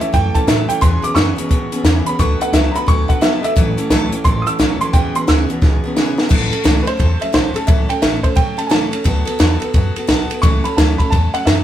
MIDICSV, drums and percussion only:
0, 0, Header, 1, 2, 480
1, 0, Start_track
1, 0, Key_signature, 3, "major"
1, 0, Tempo, 343249
1, 1147, Time_signature, 4, 2, 24, 8
1, 16273, End_track
2, 0, Start_track
2, 0, Title_t, "Drums"
2, 17, Note_on_c, 9, 42, 68
2, 157, Note_off_c, 9, 42, 0
2, 191, Note_on_c, 9, 36, 92
2, 192, Note_on_c, 9, 42, 79
2, 331, Note_off_c, 9, 36, 0
2, 332, Note_off_c, 9, 42, 0
2, 491, Note_on_c, 9, 42, 70
2, 493, Note_on_c, 9, 36, 87
2, 631, Note_off_c, 9, 42, 0
2, 633, Note_off_c, 9, 36, 0
2, 672, Note_on_c, 9, 38, 110
2, 672, Note_on_c, 9, 42, 90
2, 811, Note_off_c, 9, 38, 0
2, 811, Note_off_c, 9, 42, 0
2, 973, Note_on_c, 9, 42, 68
2, 1113, Note_off_c, 9, 42, 0
2, 1148, Note_on_c, 9, 42, 84
2, 1149, Note_on_c, 9, 36, 113
2, 1288, Note_off_c, 9, 42, 0
2, 1289, Note_off_c, 9, 36, 0
2, 1455, Note_on_c, 9, 42, 62
2, 1595, Note_off_c, 9, 42, 0
2, 1628, Note_on_c, 9, 38, 108
2, 1628, Note_on_c, 9, 42, 87
2, 1768, Note_off_c, 9, 38, 0
2, 1768, Note_off_c, 9, 42, 0
2, 1934, Note_on_c, 9, 42, 65
2, 2074, Note_off_c, 9, 42, 0
2, 2107, Note_on_c, 9, 42, 72
2, 2108, Note_on_c, 9, 36, 97
2, 2246, Note_off_c, 9, 42, 0
2, 2248, Note_off_c, 9, 36, 0
2, 2408, Note_on_c, 9, 42, 59
2, 2548, Note_off_c, 9, 42, 0
2, 2581, Note_on_c, 9, 38, 114
2, 2581, Note_on_c, 9, 42, 78
2, 2721, Note_off_c, 9, 38, 0
2, 2721, Note_off_c, 9, 42, 0
2, 2886, Note_on_c, 9, 42, 67
2, 3026, Note_off_c, 9, 42, 0
2, 3068, Note_on_c, 9, 36, 113
2, 3070, Note_on_c, 9, 42, 84
2, 3208, Note_off_c, 9, 36, 0
2, 3210, Note_off_c, 9, 42, 0
2, 3373, Note_on_c, 9, 42, 66
2, 3513, Note_off_c, 9, 42, 0
2, 3546, Note_on_c, 9, 38, 107
2, 3546, Note_on_c, 9, 42, 95
2, 3686, Note_off_c, 9, 38, 0
2, 3686, Note_off_c, 9, 42, 0
2, 3851, Note_on_c, 9, 42, 62
2, 3991, Note_off_c, 9, 42, 0
2, 4027, Note_on_c, 9, 36, 100
2, 4028, Note_on_c, 9, 42, 77
2, 4167, Note_off_c, 9, 36, 0
2, 4168, Note_off_c, 9, 42, 0
2, 4330, Note_on_c, 9, 36, 91
2, 4331, Note_on_c, 9, 42, 64
2, 4470, Note_off_c, 9, 36, 0
2, 4471, Note_off_c, 9, 42, 0
2, 4506, Note_on_c, 9, 38, 120
2, 4506, Note_on_c, 9, 42, 93
2, 4646, Note_off_c, 9, 38, 0
2, 4646, Note_off_c, 9, 42, 0
2, 4814, Note_on_c, 9, 42, 72
2, 4954, Note_off_c, 9, 42, 0
2, 4987, Note_on_c, 9, 36, 107
2, 4988, Note_on_c, 9, 42, 90
2, 5126, Note_off_c, 9, 36, 0
2, 5128, Note_off_c, 9, 42, 0
2, 5286, Note_on_c, 9, 42, 63
2, 5425, Note_off_c, 9, 42, 0
2, 5460, Note_on_c, 9, 38, 118
2, 5460, Note_on_c, 9, 42, 81
2, 5600, Note_off_c, 9, 38, 0
2, 5600, Note_off_c, 9, 42, 0
2, 5766, Note_on_c, 9, 42, 60
2, 5906, Note_off_c, 9, 42, 0
2, 5943, Note_on_c, 9, 42, 81
2, 5944, Note_on_c, 9, 36, 93
2, 6083, Note_off_c, 9, 42, 0
2, 6084, Note_off_c, 9, 36, 0
2, 6251, Note_on_c, 9, 42, 64
2, 6391, Note_off_c, 9, 42, 0
2, 6426, Note_on_c, 9, 38, 108
2, 6426, Note_on_c, 9, 42, 86
2, 6566, Note_off_c, 9, 38, 0
2, 6566, Note_off_c, 9, 42, 0
2, 6728, Note_on_c, 9, 42, 65
2, 6868, Note_off_c, 9, 42, 0
2, 6903, Note_on_c, 9, 36, 123
2, 6906, Note_on_c, 9, 42, 88
2, 7043, Note_off_c, 9, 36, 0
2, 7046, Note_off_c, 9, 42, 0
2, 7207, Note_on_c, 9, 42, 64
2, 7347, Note_off_c, 9, 42, 0
2, 7383, Note_on_c, 9, 38, 122
2, 7383, Note_on_c, 9, 42, 87
2, 7523, Note_off_c, 9, 38, 0
2, 7523, Note_off_c, 9, 42, 0
2, 7688, Note_on_c, 9, 42, 55
2, 7828, Note_off_c, 9, 42, 0
2, 7862, Note_on_c, 9, 36, 110
2, 7864, Note_on_c, 9, 38, 56
2, 8002, Note_off_c, 9, 36, 0
2, 8004, Note_off_c, 9, 38, 0
2, 8344, Note_on_c, 9, 38, 90
2, 8484, Note_off_c, 9, 38, 0
2, 8647, Note_on_c, 9, 38, 91
2, 8787, Note_off_c, 9, 38, 0
2, 8820, Note_on_c, 9, 49, 109
2, 8822, Note_on_c, 9, 36, 112
2, 8960, Note_off_c, 9, 49, 0
2, 8962, Note_off_c, 9, 36, 0
2, 9128, Note_on_c, 9, 51, 64
2, 9268, Note_off_c, 9, 51, 0
2, 9304, Note_on_c, 9, 38, 110
2, 9304, Note_on_c, 9, 51, 90
2, 9444, Note_off_c, 9, 38, 0
2, 9444, Note_off_c, 9, 51, 0
2, 9610, Note_on_c, 9, 51, 65
2, 9750, Note_off_c, 9, 51, 0
2, 9784, Note_on_c, 9, 36, 100
2, 9787, Note_on_c, 9, 51, 72
2, 9924, Note_off_c, 9, 36, 0
2, 9927, Note_off_c, 9, 51, 0
2, 10093, Note_on_c, 9, 51, 66
2, 10233, Note_off_c, 9, 51, 0
2, 10263, Note_on_c, 9, 38, 119
2, 10263, Note_on_c, 9, 51, 75
2, 10403, Note_off_c, 9, 38, 0
2, 10403, Note_off_c, 9, 51, 0
2, 10570, Note_on_c, 9, 51, 67
2, 10710, Note_off_c, 9, 51, 0
2, 10743, Note_on_c, 9, 36, 122
2, 10745, Note_on_c, 9, 51, 83
2, 10883, Note_off_c, 9, 36, 0
2, 10885, Note_off_c, 9, 51, 0
2, 11047, Note_on_c, 9, 51, 63
2, 11187, Note_off_c, 9, 51, 0
2, 11222, Note_on_c, 9, 38, 116
2, 11222, Note_on_c, 9, 51, 91
2, 11362, Note_off_c, 9, 38, 0
2, 11362, Note_off_c, 9, 51, 0
2, 11524, Note_on_c, 9, 36, 83
2, 11524, Note_on_c, 9, 51, 66
2, 11664, Note_off_c, 9, 36, 0
2, 11664, Note_off_c, 9, 51, 0
2, 11698, Note_on_c, 9, 51, 81
2, 11700, Note_on_c, 9, 36, 101
2, 11838, Note_off_c, 9, 51, 0
2, 11840, Note_off_c, 9, 36, 0
2, 12006, Note_on_c, 9, 51, 69
2, 12145, Note_off_c, 9, 51, 0
2, 12184, Note_on_c, 9, 38, 114
2, 12184, Note_on_c, 9, 51, 91
2, 12324, Note_off_c, 9, 38, 0
2, 12324, Note_off_c, 9, 51, 0
2, 12486, Note_on_c, 9, 51, 71
2, 12626, Note_off_c, 9, 51, 0
2, 12659, Note_on_c, 9, 51, 95
2, 12661, Note_on_c, 9, 36, 109
2, 12799, Note_off_c, 9, 51, 0
2, 12800, Note_off_c, 9, 36, 0
2, 12967, Note_on_c, 9, 51, 69
2, 13107, Note_off_c, 9, 51, 0
2, 13143, Note_on_c, 9, 38, 114
2, 13143, Note_on_c, 9, 51, 96
2, 13283, Note_off_c, 9, 38, 0
2, 13283, Note_off_c, 9, 51, 0
2, 13448, Note_on_c, 9, 51, 57
2, 13588, Note_off_c, 9, 51, 0
2, 13622, Note_on_c, 9, 51, 74
2, 13623, Note_on_c, 9, 36, 113
2, 13762, Note_off_c, 9, 51, 0
2, 13763, Note_off_c, 9, 36, 0
2, 13931, Note_on_c, 9, 51, 62
2, 14071, Note_off_c, 9, 51, 0
2, 14103, Note_on_c, 9, 38, 105
2, 14103, Note_on_c, 9, 51, 88
2, 14243, Note_off_c, 9, 38, 0
2, 14243, Note_off_c, 9, 51, 0
2, 14413, Note_on_c, 9, 51, 66
2, 14553, Note_off_c, 9, 51, 0
2, 14589, Note_on_c, 9, 36, 123
2, 14589, Note_on_c, 9, 51, 86
2, 14728, Note_off_c, 9, 51, 0
2, 14729, Note_off_c, 9, 36, 0
2, 14896, Note_on_c, 9, 51, 61
2, 15036, Note_off_c, 9, 51, 0
2, 15074, Note_on_c, 9, 38, 118
2, 15074, Note_on_c, 9, 51, 95
2, 15214, Note_off_c, 9, 38, 0
2, 15214, Note_off_c, 9, 51, 0
2, 15377, Note_on_c, 9, 36, 83
2, 15382, Note_on_c, 9, 51, 59
2, 15517, Note_off_c, 9, 36, 0
2, 15521, Note_off_c, 9, 51, 0
2, 15555, Note_on_c, 9, 36, 105
2, 15558, Note_on_c, 9, 51, 81
2, 15695, Note_off_c, 9, 36, 0
2, 15698, Note_off_c, 9, 51, 0
2, 15863, Note_on_c, 9, 51, 69
2, 16003, Note_off_c, 9, 51, 0
2, 16040, Note_on_c, 9, 38, 122
2, 16040, Note_on_c, 9, 51, 91
2, 16180, Note_off_c, 9, 38, 0
2, 16180, Note_off_c, 9, 51, 0
2, 16273, End_track
0, 0, End_of_file